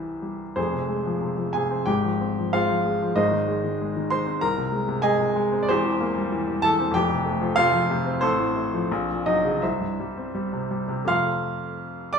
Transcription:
Already playing: C2 E3 G3 E4 G4 C5
0.22 G3
0.56 F1 F2 C4 G#4 C5
0.73 C3
0.89 G#3
1.06 F3
1.21 C3
1.37 F3
1.53 C3 G#4 G#5
1.71 C4
1.86 G#1 G#2 G4 G5
2.04 F3
2.21 C4
2.39 F3
2.53 G#3 F4 C5 F5
2.69 F3
2.85 G#3
3.02 F3
3.15 G#1 G#2 D#4 C5 D#5
3.31 D#3
3.48 G#3
3.64 D#3
3.81 G#3
3.96 D#3
4.10 G#3 C5 C6
4.27 C4
4.41 C2 A#4 A#5
4.57 C3
4.72 G#3
4.88 C3
5.02 G#3 G#4 D#5 G#5
5.19 C3
5.36 G#3
5.52 C4
5.63 D5
5.69 E1 E2 C4 G4 C5
5.85 E3
6.01 A#3
6.17 G3
6.32 E3
6.48 G3
6.62 E3 A4 A5
6.80 C4
6.91 F1 F2 G5
6.95 G4
7.10 C3
7.26 A3
7.41 F3
7.56 C3 F4 C5 F5
7.73 F3
7.90 C3
8.06 C4
8.21 A1 C4 A4 C5
8.39 A2
8.55 A3
8.74 F3
8.92 A#1
9.11 A#2
9.26 F#3 D#4 D#5
9.45 C#3
9.62 C2 E4 C5 E5
9.80 G2
10.00 G3
10.17 C4
10.35 G3
10.53 C3
10.71 G3
10.88 C3
11.05 F2 C3 A3 F4 F5 C6 F6
12.13 D5 D6

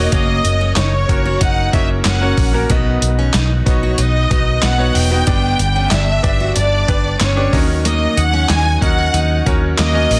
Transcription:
Already playing: A#3 D#4 F#4 C#5 D#5
0.12 F#1 C#3 F#3 A#3 C#4 F#4 C#5 D#5, kick, closed hi-hat
0.44 F#1, closed hi-hat
0.61 C#4
0.76 F#1 D#4 C#5, snare, clap, closed hi-hat
1.09 F#1 A#3 C#4 F#4 A#4, kick, closed hi-hat
1.25 F#4
1.41 F#1 D#4 F#5, kick, closed hi-hat
1.73 F#1 A#3 C#4 D#4 F#4 C#5 E5, kick, closed hi-hat
2.04 F#1 C#4 F#5, snare, clap, closed hi-hat
2.21 A#3 C#4 F#4 C#5
2.38 A#1, kick, open hi-hat
2.53 A#3 C#4 F#4 A#4
2.69 B1 B2 D#3 B3 D#4 F#4 D#5, kick, closed hi-hat
3.02 B1, closed hi-hat
3.19 C#4
3.33 B1 D#4, snare, clap, closed hi-hat
3.66 B1 B3 D#4 F#4 C#5 D#5, kick, snare, closed hi-hat
3.83 F#4
3.98 B1 D#4 D#5, closed hi-hat
4.30 B1 B3 D#4 F#4 D#5, kick, closed hi-hat
4.62 B1 B3 F#5, snare, clap, closed hi-hat
4.78 B3 D#4 F#4 C#5
4.95 E1 G5, open hi-hat
5.11 B3 D#4 F#4 D#5
5.27 G1 G2 D3 G3 B3 D4 G4 D5, kick, closed hi-hat
5.59 G1, closed hi-hat
5.76 C#4
5.91 G1 D4 E5, snare, clap, closed hi-hat
6.23 G1 B3 D4 G4 D5, kick, closed hi-hat
6.40 F#4
6.56 G1 D4 D5, closed hi-hat
6.88 G1 B3 D4 G4 B4, kick, closed hi-hat
7.20 G1 C#4 C#5, snare, clap, closed hi-hat
7.36 B3 D4 G4 D5
7.53 D#2 D#3 F#3 C#4 F#4 A#4 D#5, kick, open hi-hat
7.85 A#3 D#5, closed hi-hat
8.17 D#2 F#5, closed hi-hat
8.33 C#4
8.49 D#2 D#4 G#5, snare, clap, closed hi-hat
8.81 D#2 C#4 F#4 A#4 D#5 F#5, kick, closed hi-hat
8.98 F#4
9.14 D#2 D#4, closed hi-hat
9.46 D#2 C#4 D#4 F#4 A#4 C#5, kick, closed hi-hat
9.78 D#2 A#3 D#5, snare, clap, closed hi-hat
9.94 C#4 F#4 A#4 D#5
10.11 A#1, open hi-hat

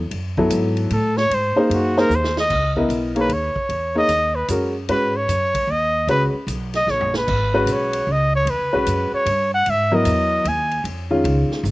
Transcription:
Already playing: E2
0.11 F#2, ride
0.37 F#3 B3 E4 A4, kick
0.50 G#2, hi-hat pedal, ride
0.77 ride
0.90 A2 A4, ride
1.17 C#5, snare
1.30 G#2, ride
1.34 C5
1.56 A#3 D#4 G#4 C5, muted upright bass stroke
1.70 F#2 F#4, ride
1.97 A#3 D#4 G#4 A#4 C5, snare
2.09 D#2, hi-hat pedal
2.15 C5
2.24 snare
2.37 D#5, snare
2.50 C#2, kick, crash
2.76 B3 E4 A#4 D#5, kick
2.89 B1, hi-hat pedal, ride
3.15 A#3 D#4 G#4 C#5, ride
3.20 B4
3.29 D#2, ride
3.33 C#5
3.56 kick
3.69 E2, ride
3.95 A#3 D#4 G#4 C#5 D#5
4.08 D#2, hi-hat pedal, ride
4.35 B4
4.48 F#2 G#3 C#4 F#4 A#4, hi-hat pedal, ride
4.89 G#2 G#3 C#4 F#4 B4, ride
5.16 C#5
5.28 F#2, hi-hat pedal, ride
5.55 kick, ride
5.67 D#2 D#5
6.07 C#2 G#3 C#4 F#4 B4, ride
6.47 B1, hi-hat pedal, ride
6.74 D#5, snare, ride
6.87 A#1 C#5, snare
7.01 floor tom
7.14 B4, snare
7.27 G#1, kick, crash
7.53 G#3 C#4 F#4 B4
7.66 B1, hi-hat pedal, ride
7.73 C#5
7.93 ride
8.07 C#2
8.12 D#5
8.35 C#5
8.45 E2, ride
8.50 B4
8.59 C#2
8.72 B1 G#3 C#4 F#4 B4
8.86 F#2, hi-hat pedal, ride
9.12 C#5, muted upright bass stroke
9.26 G2, ride
9.54 F#5
9.66 G#2 E5, ride
9.92 F#3 B3 E4 A#4 D#5
10.05 E2, hi-hat pedal, ride
10.45 D#2 G#5, ride
10.71 ride
10.84 F2, ride
11.10 D#3 G#3 C#4 F4
11.24 C#2, ride
11.51 snare
11.63 G#1, hi-hat pedal

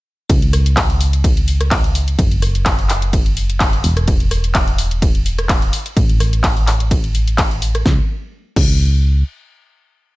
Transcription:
0.30 C#2, kick, closed hi-hat, ride
0.42 closed hi-hat
0.53 cross-stick, open hi-hat
0.66 closed hi-hat
0.77 kick, clap, closed hi-hat, ride
0.90 closed hi-hat
1.01 open hi-hat
1.13 closed hi-hat
1.24 kick, closed hi-hat, ride
1.37 closed hi-hat
1.48 open hi-hat
1.61 cross-stick, closed hi-hat
1.71 kick, clap, closed hi-hat, ride
1.84 closed hi-hat
1.95 open hi-hat
2.08 closed hi-hat
2.19 F#1, kick, closed hi-hat, ride
2.31 closed hi-hat
2.42 cross-stick, open hi-hat
2.55 closed hi-hat
2.66 kick, clap, closed hi-hat, ride
2.79 closed hi-hat
2.89 clap, open hi-hat
3.02 closed hi-hat
3.13 kick, closed hi-hat, ride
3.26 closed hi-hat
3.37 open hi-hat
3.50 closed hi-hat
3.60 kick, clap, closed hi-hat, ride
3.73 closed hi-hat
3.84 E1, open hi-hat
3.97 cross-stick, closed hi-hat
4.08 kick, closed hi-hat, ride
4.20 closed hi-hat
4.31 cross-stick, open hi-hat
4.44 closed hi-hat
4.55 kick, clap, closed hi-hat, ride
4.68 closed hi-hat
4.78 open hi-hat
4.91 closed hi-hat
5.02 kick, closed hi-hat, ride
5.15 closed hi-hat
5.26 open hi-hat
5.39 cross-stick, closed hi-hat
5.49 kick, clap, closed hi-hat, ride
5.62 closed hi-hat
5.73 open hi-hat
5.86 closed hi-hat
5.97 A1, kick, closed hi-hat, ride
6.09 closed hi-hat
6.20 cross-stick, open hi-hat
6.33 closed hi-hat
6.44 kick, clap, closed hi-hat, ride
6.57 closed hi-hat
6.67 clap, open hi-hat
6.80 closed hi-hat
6.91 kick, closed hi-hat, ride
7.04 closed hi-hat
7.15 open hi-hat
7.28 closed hi-hat
7.38 kick, clap, closed hi-hat, ride
7.51 closed hi-hat
7.62 open hi-hat
7.75 cross-stick, closed hi-hat
7.86 C#2, kick, snare
8.56 C#2, kick, crash

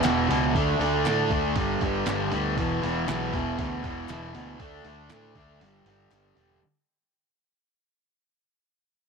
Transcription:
0.04 E1 E2 B2 E3, snare, clap, open hi-hat
0.28 C#2 E2 B2 E3, open hi-hat
0.54 D2 D3 A3 D4, kick, open hi-hat
0.79 D2 D3 A3 D4, open hi-hat
1.05 A2 D3 A3 D4, snare, clap, open hi-hat
1.30 D2 D3 A3 D4, kick, open hi-hat
1.55 G1 G2 D3 G3, kick, open hi-hat
1.81 G1 G2 D3 G3, kick, open hi-hat
2.06 G1 G2 D3 G3, snare, clap, open hi-hat
2.32 D2 G2 D3 G3, open hi-hat
2.57 E1 E2 B2 E3, kick, open hi-hat
2.83 E1 E2 B2 E3, open hi-hat
3.07 B1 E2 B2 E3, snare, clap, open hi-hat
3.33 E1 E2 B2 E3, kick, open hi-hat
3.58 D2 E2 B2 E3, kick, open hi-hat
3.83 E1 E2 B2 E3, kick, open hi-hat
4.09 E1 E2 B2 E3, snare, clap, open hi-hat
4.35 D2 E2 B2 E3, open hi-hat
4.60 D2 D3 A3 D4, kick, open hi-hat
4.84 D2 D3 A3 D4, open hi-hat
5.09 A2 D3 A3 D4, snare, clap, open hi-hat
5.35 D2 D3 A3 D4, kick, open hi-hat
5.60 G1 G2 D3 G3, open hi-hat
5.85 G1 G2 D3 G3, open hi-hat
6.11 G1 G2 D3 G3, clap, open hi-hat
6.36 E1 G2 D3 G3, open hi-hat

